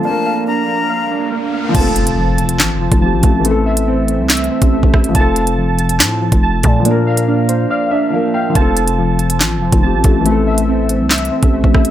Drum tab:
CC |------------------------------------------------|x-----------------------------------------------|------------------------------------------------|------------------------------------------------|
HH |------------------------------------------------|x-----x--x--------x--x-----------x--------x-----|x--------x--------x-----x-x-x----x-----------x--|x-----x--x--------x--x-----------x--------x-----|
CP |------------------------------------------------|------------------------x-----------------------|------------------------x-----------------------|------------------------x-----------------------|
SD |------------------------------------------------|------------------------o-----------------------|------------------------o-----------------r-----|------------------------o-----------------------|
BD |------------------------------------------------|o--------------------------------o--------o-----|---------------------------------o-----o--o-----|o--------------------------------o--------o-----|

CC |------------------------------------------------|------------------------------------------------|------------------------------------------------|
HH |x--------x--------x-----------------------------|x-----x--x--------x--x-----------x--------x-----|x--------x--------x-----x-x-x----x-----------x--|
CP |------------------------------------------------|------------------------x-----------------------|------------------------x-----------------------|
SD |------------------------------------------------|------------------------o-----------------------|------------------------o-----------------r-----|
BD |------------------------------------------------|o--------------------------------o--------o-----|---------------------------------o-----o--o-----|